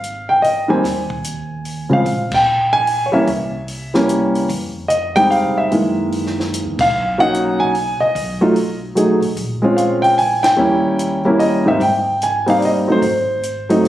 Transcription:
Already playing: upright bass G#1, grand piano F5
0.04 closed hi-hat
0.29 grand piano G5
0.42 grand piano D#5, open hi-hat
0.68 grand piano D#3 G3 A#3 C4 G#5
0.84 upright bass D#2, kick, snare, open hi-hat
1.10 kick
1.24 closed hi-hat
1.65 open hi-hat
1.89 grand piano C#3 F3 G#3 C4 F5
2.06 upright bass A#1, kick, open hi-hat
2.31 grand piano G5, kick, crash
2.73 grand piano G#5
2.87 open hi-hat
3.06 grand piano C#5
3.12 grand piano E3 G3 A#3 C#4 E5, muted upright bass stroke
3.27 upright bass C2, kick, open hi-hat
3.68 open hi-hat
3.94 grand piano E3 G3 A#3 C#4, snare
4.09 closed hi-hat
4.35 open hi-hat
4.49 upright bass F2, kick, open hi-hat
4.88 grand piano D#5, closed hi-hat
5.16 grand piano G3 G#3 C4 D#4 G5, open hi-hat
5.31 grand piano F5, open hi-hat
5.44 upright bass C3
5.57 upright bass C#3, grand piano E5
5.70 upright bass F#2, grand piano D#3 E3 G#3 A#3, kick, open hi-hat
6.12 open hi-hat
6.26 snare
6.40 snare
6.54 closed hi-hat
6.65 upright bass E2
6.78 upright bass A#1, grand piano F5, kick, crash
6.91 upright bass B1
7.18 grand piano F#3 A#3 C#4 D#4 F#5
7.34 closed hi-hat
7.60 grand piano G#5
7.75 open hi-hat
8.00 grand piano D#5, muted upright bass stroke
8.15 upright bass B1, kick, open hi-hat
8.41 grand piano F#3 A3 D#4 F4
8.56 open hi-hat
8.95 grand piano F#3 A3 D#4 G#4, closed hi-hat
9.22 upright bass A1, open hi-hat
9.36 upright bass A#1, kick, open hi-hat
9.62 grand piano G#3 C4 C#4 F4
9.77 grand piano F5, closed hi-hat
10.02 grand piano G5, open hi-hat
10.18 grand piano G#5, open hi-hat
10.43 grand piano G5, snare, ride
10.56 upright bass D#2, grand piano G3 A#3 C#4 E4
10.99 closed hi-hat
11.25 grand piano G3 A#3 C#4 E4
11.39 grand piano D#5, open hi-hat
11.65 grand piano G#2 G3 A#3 C4 D#4 E5
11.80 upright bass G#1, grand piano G5, kick, open hi-hat
12.22 grand piano G#5, closed hi-hat
12.46 grand piano G3 A#3 C4 D#4 F5, open hi-hat
12.58 grand piano D5, open hi-hat
12.65 grand piano D#5
12.87 grand piano F#3 A3 C4 D#4
12.92 grand piano C5
13.02 upright bass G#1, kick, open hi-hat
13.43 closed hi-hat
13.69 grand piano F#3 A3 C4 D#4, open hi-hat
13.82 upright bass G#2, snare, open hi-hat

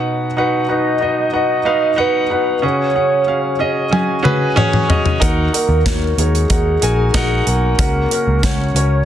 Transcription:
Already playing: upright piano B2 D#4 F#4 B4 F#5
0.37 upright piano D#4 F#4 B4 F#5
0.69 upright piano D#4 F#4 B4 F#5, soft synth lead D#5
1.01 upright piano D#4 F#4 B4 D#5
1.33 upright piano D#4 F#4 B4 F#5, soft synth lead D#5
1.65 upright piano D#4 F#4 B4 F5
1.96 upright piano D#4 F#4 B4 F#5, soft synth lead B4
2.30 upright piano D#4 F#4 B4 F#5
2.62 upright piano C#3 C#4 F#4 G#4 F#5, soft synth lead C#5
2.94 upright piano C#4 F#4 G#4 F#5
3.27 upright piano C#4 F#4 G#4 F5
3.59 upright piano C#4 F#4 G#4 D#5
3.91 upright piano C#4 F#4 G#4 G#5, high tom
4.23 upright piano C#4 F#4 G#4 B4, mid tom
4.56 upright piano C#4 F#4 G#4 C#5, mid tom
4.73 mid tom
4.88 upright piano C#4 F#4 G#4 D#5, floor tom
5.06 floor tom
5.20 picked electric bass D#2, upright piano D#3 D#4 F#4 A#4 F#5, kick, closed hi-hat
5.53 upright piano D#4 F#4 A#4 F#5, soft synth lead A#4, closed hi-hat
5.69 picked electric bass D#2
5.85 upright piano D#4 F#4 A#4 C#5, kick, snare, closed hi-hat
6.18 picked electric bass D#2, upright piano D#4 F#4 A#4 C#5, soft synth lead G#4, closed hi-hat
6.35 closed hi-hat
6.50 picked electric bass D#2, upright piano D#4 F#4 A#4 F#5, kick, closed hi-hat
6.82 picked electric bass A#1, upright piano D#4 F#4 A#4 G#5, closed hi-hat
7.14 upright piano D#4 F#4 A#4 F#5, kick, snare, closed hi-hat
7.47 picked electric bass B1, upright piano D#4 F#4 A#4 F#5, soft synth lead A#4, closed hi-hat
7.78 picked electric bass C#2, upright piano C#3 C#4 F#4 A#4 F#5, soft synth lead A#4, kick, closed hi-hat
8.11 upright piano C#4 F#4 A#4 F#5, closed hi-hat
8.27 picked electric bass C#2
8.42 upright piano C#4 F#4 A#4 F#5, soft synth lead C#5, kick, snare, closed hi-hat
8.75 picked electric bass C#2, upright piano C#4 F#4 A#4 C#5, closed hi-hat

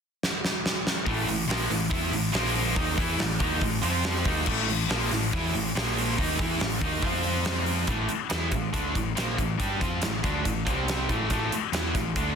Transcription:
0.23 snare
0.45 snare
0.66 snare
0.87 snare
1.06 picked electric bass A1, distorted electric guitar A2 E3 A3, kick, open hi-hat
1.27 picked electric bass A1, distorted electric guitar A2 E3, open hi-hat
1.47 picked electric bass A#1, distorted electric guitar A#2 F3 A#3, open hi-hat
1.51 snare
1.69 picked electric bass A1, distorted electric guitar A2 E3, snare, open hi-hat
1.91 picked electric bass E2, distorted electric guitar E3 B3 E4, kick, open hi-hat
2.11 picked electric bass A1, distorted electric guitar A2 E3, open hi-hat
2.33 picked electric bass A#1, distorted electric guitar A#2 F3 A#3, snare, open hi-hat
2.46 snare
2.55 open hi-hat
2.75 picked electric bass D#2, distorted electric guitar D#3 A#3 D#4, kick, open hi-hat
2.96 picked electric bass E2, distorted electric guitar E3 B3 E4, kick
3.18 picked electric bass A1, distorted electric guitar A2 E3, snare, open hi-hat
3.39 picked electric bass D#2, distorted electric guitar D#3 A#3 D#4, kick, open hi-hat
3.61 picked electric bass A1, distorted electric guitar A2 E3, kick, open hi-hat
3.83 picked electric bass F2, distorted electric guitar F3 C4 F4, open hi-hat
4.04 snare, open hi-hat
4.16 snare
4.24 picked electric bass D#2, distorted electric guitar D#3 A#3 D#4, kick, open hi-hat
4.46 picked electric bass A1, distorted electric guitar A2 E3 A3, kick, crash
4.68 picked electric bass A1, distorted electric guitar A2 E3, open hi-hat
4.89 picked electric bass A#1, distorted electric guitar A#2 F3 A#3, snare, open hi-hat
5.11 picked electric bass A1, distorted electric guitar A2 E3, snare, open hi-hat
5.33 picked electric bass E2, distorted electric guitar E3 B3 E4, kick, open hi-hat
5.54 picked electric bass A1, distorted electric guitar A2 E3, open hi-hat
5.75 picked electric bass A#1, distorted electric guitar A#2 F3 A#3, snare, open hi-hat
5.88 snare
5.98 open hi-hat
6.17 picked electric bass D#2, distorted electric guitar D#3 A#3 D#4, kick, open hi-hat
6.39 picked electric bass E2, distorted electric guitar E3 B3 E4, kick
6.59 picked electric bass A1, distorted electric guitar A2 E3, snare, open hi-hat
6.64 overdriven electric guitar A2
6.81 picked electric bass D#2, distorted electric guitar D#3 A#3 D#4, kick, open hi-hat
7.02 picked electric bass F2, distorted electric guitar F3 C4 F4, kick, open hi-hat
7.23 open hi-hat
7.45 snare, open hi-hat
7.66 open hi-hat
7.87 picked electric bass A1, distorted electric guitar A2 E3 A3, kick, closed hi-hat
8.09 muted distorted electric guitar stroke, muted picked electric bass stroke, muted overdriven electric guitar stroke, closed hi-hat
8.30 picked electric bass E2, distorted electric guitar E3 B3 E4, snare, closed hi-hat
8.52 picked electric bass A1, distorted electric guitar A2 E3, kick, closed hi-hat
8.73 picked electric bass D2, distorted electric guitar D3 A3 D4, kick, closed hi-hat
8.95 picked electric bass A1, distorted electric guitar A2 E3, kick, closed hi-hat
9.15 picked electric bass A#1, distorted electric guitar A#2 F3 A#3, snare, closed hi-hat
9.37 picked electric bass A1, distorted electric guitar A2 E3, kick, closed hi-hat
9.58 picked electric bass G2, distorted electric guitar G3 D4 G4, kick, closed hi-hat
9.80 picked electric bass F2, distorted electric guitar F3 C4 F4, kick, closed hi-hat
10.01 picked electric bass A1, distorted electric guitar A2 E3, snare, closed hi-hat
10.23 picked electric bass D2, distorted electric guitar D3 A3 D4, kick, snare, closed hi-hat
10.45 picked electric bass A1, distorted electric guitar A2 E3, kick, closed hi-hat
10.66 picked electric bass C2, distorted electric guitar C3 G3 C4, kick, closed hi-hat
10.88 snare, closed hi-hat
11.09 picked electric bass A1, distorted electric guitar A2 E3 A3, kick, closed hi-hat
11.30 picked electric bass A1, distorted electric guitar A2 E3 A3, kick, closed hi-hat
11.52 muted picked electric bass stroke, muted distorted electric guitar stroke, muted overdriven electric guitar stroke, closed hi-hat
11.72 picked electric bass E2, distorted electric guitar E3 B3 E4, snare, closed hi-hat
11.95 picked electric bass A1, distorted electric guitar A2 E3, kick, snare, closed hi-hat
12.16 picked electric bass D2, distorted electric guitar D3 A3 D4, kick, closed hi-hat

